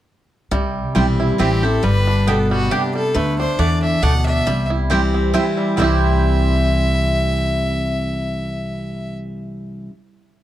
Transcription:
0.51 C2 C3 G3
0.95 B1 E3 G3 C4 E4 C5 G5
1.20 E4
1.38 A1 E3 G3 C4 E4 G4 C5 G5
1.63 C4 E4 G4 A4
1.83 G1 G2 G3 B4
2.07 D4
2.27 B2 B3 G4 A4 D5 G5
2.51 G3 F#4
2.71 C3 B3 D4 G4 D5 G5
2.95 G3 A4
3.14 D2 D3 A3 B4
3.39 D4 C5
3.59 E2 E3 A3 D4 F#4 D5 A5
3.82 D4 E5
4.02 D2 B2 A3 D4 F#4 D5 F#5 A5
4.26 D4 E5
4.47 C2 C3 G3
4.70 E4
4.90 E3 G3 C4 E4 G4 C5 G5
5.14 C4
5.33 E3 G3 C4 E4 C5 G5
5.57 G3
5.77 C2 C3 E3 G3 C4 E4 C5 E5 G5
5.82 E4 G4

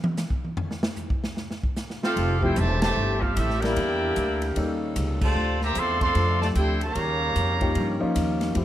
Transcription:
0.04 high tom
0.17 snare, hi-hat pedal
0.30 kick
0.44 high tom
0.57 floor tom
0.71 snare
0.83 snare
0.96 floor tom, hi-hat pedal
1.10 kick
1.24 snare
1.37 snare
1.51 snare
1.63 kick
1.76 snare, hi-hat pedal
1.90 snare
2.03 A3 C4 F4 G4 A4 F5, snare
2.16 F1 G3 A3 E4 G4, kick, ride
2.40 F3 A3 C4 E4 G4, kick
2.44 E4 G4 A4 C5 G5
2.55 E1 C3 E3 A3 G4 C5 E5 A5, kick, hi-hat pedal, ride
2.80 C3 E3 A3 G4 C5 E5 A5, snare, ride
2.96 G1
3.20 A3 C4 F4 G4 A4 F5, kick
3.34 A1 A3 C4 E4 G4 A4 E5, kick, hi-hat pedal, ride
3.50 snare
3.60 G3 A#3 D4 E4 G4 A#4 D5 G5, snare, ride
3.64 E4 A#4
3.76 E2 D3 G3 A#3 E4, kick, ride
4.16 D2, kick, hi-hat pedal, ride
4.42 ride
4.56 D#2 C#3 G3 A#3 C#4 D#4 A4, kick, ride
4.96 C#2, kick, hi-hat pedal, ride
5.21 C3 F3 A3 F4 C5 D5 A5, kick, crash
5.35 D2 D3 C4
5.61 A#3 G4 C5 E5 A#5, snare
5.75 E2 F3 A3 C4 A4 D5 C6, kick, hi-hat pedal, ride
5.79 F5
6.00 F3 A3 C4 A4 D5 F5 C6, kick, ride
6.15 F2 F3 A3 C4 D4 A4, kick, ride
6.41 C3 F3 A3 F4 C5 D5 A5, snare
6.55 D2 E4 G4 A4 C5 G5, kick, hi-hat pedal, ride
6.81 C#3 G3 A#3 G4 C#5 F5 A#5, ride
6.95 D#2 D#3 G3 C#4, kick, ride
7.36 F2, kick, hi-hat pedal, ride
7.61 F3 A#3 C#4 D#4 G4, kick, ride
7.75 G2, kick, ride
8.00 F3 A#3 C#4 D#4 F4, muted upright bass stroke
8.16 D#2, kick, hi-hat pedal, ride
8.41 snare, ride
8.54 F2 E3 F3 A3 C4 E4 G4, kick, ride

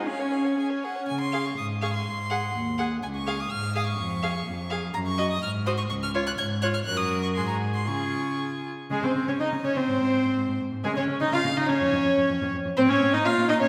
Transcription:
0.06 C#4 G#4 F5
0.19 C#5 G#5
0.31 G#4 F5
0.45 C#5 G#5
0.58 C#4 G#4 G#5
0.70 C#5
0.83 G#4 F#5
0.96 C#5
1.08 C#3 G#5
1.21 C6
1.32 G#4 F5
1.46 C#6
1.58 G#2 D#6
1.81 G#4 F5 C#6
1.95 C6
2.06 G#2
2.30 G#4 F#5
2.55 D#2
2.78 G#4 F#5
3.03 C#2 G#5
3.15 C#6
3.27 G#4 F5
3.40 D#6
3.51 G#2 F6
3.75 G#4 F5 D#6
3.88 C#6
3.99 F2
4.23 G#4 F5
4.47 F2
4.70 G#4 F5
4.94 F#2 A#5
5.07 C#6
5.18 F#4 D#5
5.30 D#6
5.42 G#2 F6
5.66 F#4 C5 D#6
5.78 C#6
5.90 C#2 C#6
6.03 F6
6.14 F4 C#5
6.27 F#6
6.38 G#2 G#6
6.62 F4 C#5 F#6
6.74 F6
6.85 F#2 F#4 A#4 F#6
6.97 D#6
7.23 C#6
7.35 G#2 F#4 G#4 C6
7.48 A#5
7.74 C6
7.87 C#3 F4 G#4 C#6
8.90 C#3 G#3 G#4
9.03 C#3 C4 C5
9.15 C#3
9.27 C#3 C#4 C#5
9.40 C#3 D#4 D#5
9.52 C#3
9.64 C#3 C#4 C#5
9.76 C#3 C4 C5
9.88 G#2
10.00 G#2
10.12 G#2
10.24 G#2
10.36 G#2
10.48 G#2
10.61 G#2
10.72 G#2
10.84 C#3 G#3 G#4
10.96 C#3 C#4 C#5
11.08 C#3
11.21 C#3 D#4 D#5
11.32 C#3 F4 F5
11.44 C#3
11.57 C#3 D#4 D#5
11.69 C#3 C#4 C#5
11.81 F2
11.93 F2
12.05 F2
12.17 F2
12.29 F2
12.42 F2
12.54 F2
12.65 F2
12.77 A2 C4 C5
12.89 A2 C#4 C#5
13.01 A2
13.13 A2 D#4 D#5
13.25 A#2 F4 F5
13.37 A#2
13.48 A#2 D#4 D#5
13.61 A#2 C#4 C#5

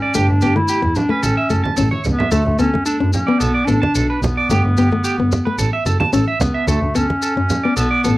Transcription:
Already playing: C#4
0.02 D5
0.14 G1 A3 D4 G4, maracas
0.29 G1
0.41 G1 B3 G4, maracas
0.56 A3 E4, high conga
0.68 G4, maracas
0.82 E2, muted nylon-string guitar stroke
0.95 D4, low conga, maracas
1.09 A3 C#4 B4
1.23 A1 A4, high conga, maracas
1.37 E5
1.50 F#1 A3 A4, maracas
1.64 A5, high conga, low conga
1.77 A1 C#4 A4, high conga, maracas
1.91 C#5, high conga
2.04 C#2 B3, low conga, maracas
2.19 E5, low conga
2.31 D2 A3 A4, maracas
2.46 D2
2.59 D2 B3 C#4 A4, maracas
2.74 A3, high conga
2.86 D4 A4, maracas
3.00 F#2 C#4
3.13 C#4, low conga, maracas
3.27 B3 D5
3.39 B1 B3 A4, maracas
3.54 D5
3.65 A1 B3 D4 A4, maracas
3.82 A5, high conga, low conga
3.95 B1 A4, maracas
4.10 B4
4.21 B1 B3, low conga, maracas
4.37 D5
4.50 G1 A3 G4, maracas
4.64 G1
4.77 G1 B3 G4, maracas
4.92 A3, high conga
5.04 G4, maracas
5.19 G1 B3
5.32 low conga, maracas
5.45 A3 B4
5.58 A1 A4, maracas
5.73 E5
5.86 F#1 A4, muted nylon-string guitar stroke, maracas
6.00 A5, high conga, low conga
6.13 A1 C#4 A4, maracas
6.28 E5
6.40 C#2 B3, low conga, maracas
6.54 E5
6.68 D2 A3 A4, maracas
6.81 D2
6.95 D2 B3 C#4 A4, maracas
7.10 muted nylon-string guitar stroke, high conga
7.22 A4, maracas
7.36 F#2 C#4
7.50 low conga, maracas
7.64 B3 D5
7.76 B1 B3 A4, maracas
7.91 D5
8.04 A1 B3 A4, maracas

